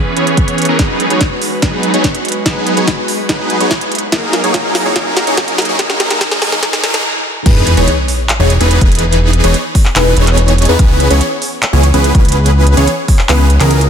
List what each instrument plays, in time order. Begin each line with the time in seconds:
Already playing: supersaw synth E3 B3 C#4 G#4 B4, analog synth pad E3 C#4 B4
0.17 supersaw synth E3 B3 C#4 G#4 C#5, closed hi-hat
0.27 closed hi-hat
0.37 kick, closed hi-hat
0.48 closed hi-hat
0.58 closed hi-hat
0.62 closed hi-hat
0.65 supersaw synth E3 B3 C#4 G#4 A#4, closed hi-hat
0.79 analog synth pad G#3 F#4, supersaw synth D#4 G#4, kick, snare, closed hi-hat, riser
1.00 closed hi-hat
1.10 supersaw synth F#3 B3 D#4 G#4 C#5, closed hi-hat
1.21 kick, snare, closed hi-hat
1.42 open hi-hat
1.62 supersaw synth F#3 B3 D#4 G#4 B4, kick, snare, closed hi-hat
1.83 closed hi-hat
1.94 supersaw synth F#3 B3 D#4 G#4 C#5, closed hi-hat
2.04 kick, snare, closed hi-hat
2.15 closed hi-hat
2.25 closed hi-hat
2.28 closed hi-hat
2.32 closed hi-hat
2.46 supersaw synth F#3 B3 D#4 G#4 B4, kick, snare, closed hi-hat
2.67 closed hi-hat
2.77 supersaw synth F#3 B3 D#4 G#4 C#5, closed hi-hat
2.87 kick, snare, closed hi-hat
3.08 open hi-hat
3.29 supersaw synth F#3 B3 D#4 G#4 B4, kick, snare, closed hi-hat
3.50 closed hi-hat
3.60 supersaw synth F#3 B3 D#4 G#4 C#5, closed hi-hat
3.71 kick, snare, closed hi-hat
3.81 closed hi-hat
3.92 closed hi-hat
3.95 closed hi-hat
3.99 closed hi-hat
4.12 analog synth pad F#3 E4 A#4, supersaw synth F#3 A#3 D#4 G#4 A#4, kick, snare, closed hi-hat
4.33 snare, closed hi-hat
4.44 supersaw synth F#3 A#3 D#4 G#4 C#5, closed hi-hat
4.54 supersaw synth F#3 A#3 D#4 G#4 A#4, kick, snare, closed hi-hat
4.75 snare, open hi-hat
4.86 supersaw synth F#3 A#3 D#4 G#4 C#5
4.96 supersaw synth F#3 A#3 D#4 G#4 A#4, kick, snare, closed hi-hat
5.17 snare, closed hi-hat
5.27 supersaw synth F#3 A#3 D#4 G#4 C#5, closed hi-hat
5.37 supersaw synth F#3 A#3 D#4 G#4 A#4, kick, snare, closed hi-hat
5.48 closed hi-hat
5.58 snare, closed hi-hat
5.62 closed hi-hat
5.65 supersaw synth F#3 A#3 D#4 G#4 C#5, closed hi-hat
5.79 supersaw synth F#3 A#3 D#4 G#4 A#4, kick, snare, closed hi-hat
5.90 snare
6.00 supersaw synth F#3 A#3 D#4 G#4 A#4, snare, closed hi-hat
6.11 snare, closed hi-hat
6.21 supersaw synth F#3 A#3 D#4 G#4 A#4, kick, snare, closed hi-hat
6.32 snare
6.42 supersaw synth F#3 A#3 D#4 G#4 A#4, snare, open hi-hat
6.52 snare
6.63 supersaw synth F#3 A#3 D#4 G#4 A#4, kick, snare, closed hi-hat
6.73 snare
6.83 supersaw synth F#3 A#3 D#4 G#4 A#4, snare, closed hi-hat
6.94 snare, closed hi-hat
7.46 analog synth bass E1, supersaw synth E3 B3 D#4 G#4 B4, digital synth lead B4, kick, closed hi-hat, crash, sub drop
7.67 closed hi-hat
7.77 analog synth bass E1, supersaw synth E3 B3 D#4 G#4 C#5, digital synth lead C#5, closed hi-hat
7.88 closed hi-hat
8.08 open hi-hat
8.29 clap, closed hi-hat
8.40 analog synth bass E1, supersaw synth E3 B3 D#4 G#4 C#5, digital synth lead C#5
8.50 closed hi-hat
8.60 analog synth bass E1, supersaw synth E3 B3 D#4 G#4 B4, digital synth lead B4, closed hi-hat
8.71 closed hi-hat
8.81 analog synth bass E1, supersaw synth B3 D#4 G#4 B4, kick, closed hi-hat
8.92 closed hi-hat
8.95 closed hi-hat
8.99 closed hi-hat
9.13 closed hi-hat
9.33 closed hi-hat
9.44 analog synth bass E1, supersaw synth E3 B3 D#4 G#4 C#5, digital synth lead C#5, closed hi-hat
9.54 closed hi-hat
9.75 kick, open hi-hat
9.85 clap
9.96 analog synth bass E1, supersaw synth E3 B3 D#4 G#4 B4, digital synth lead B4, clap, closed hi-hat
10.16 analog synth bass E1, supersaw synth E3 B3 D#4 G#4 C#5, digital synth lead C#5, closed hi-hat
10.27 clap, closed hi-hat
10.38 closed hi-hat
10.48 closed hi-hat
10.58 closed hi-hat
10.62 closed hi-hat
10.65 analog synth bass E2, supersaw synth E3 B3 D#4 G#4 B4, digital synth lead B4, closed hi-hat
10.79 analog synth bass C#2, supersaw synth B3 C#4 B4, kick, closed hi-hat
11.00 closed hi-hat
11.10 analog synth bass C#2, supersaw synth E3 B3 C#4 G#4 C#5, digital synth lead C#5, closed hi-hat
11.21 closed hi-hat
11.42 open hi-hat
11.63 clap, closed hi-hat
11.73 analog synth bass C#2, supersaw synth E3 B3 C#4 G#4 C#5, digital synth lead C#5
11.83 closed hi-hat
11.94 analog synth bass C#2, supersaw synth E3 B3 C#4 G#4 B4, digital synth lead B4, closed hi-hat
12.04 closed hi-hat
12.15 analog synth bass C#2, supersaw synth E3 B3 C#4 G#4 B4, digital synth lead B4, kick, closed hi-hat
12.25 closed hi-hat
12.29 closed hi-hat
12.32 closed hi-hat
12.46 closed hi-hat
12.67 closed hi-hat
12.77 analog synth bass C#2, supersaw synth E3 B3 C#4 G#4 C#5, digital synth lead C#5, closed hi-hat
12.87 closed hi-hat
13.08 kick, open hi-hat
13.19 clap
13.29 analog synth bass C#2, supersaw synth E3 B3 C#4 G#4 B4, digital synth lead B4, clap, closed hi-hat
13.50 closed hi-hat
13.60 analog synth bass C#2, supersaw synth E3 B3 C#4 G#4 A#4, digital synth lead A#4, clap, closed hi-hat
13.71 closed hi-hat
13.81 closed hi-hat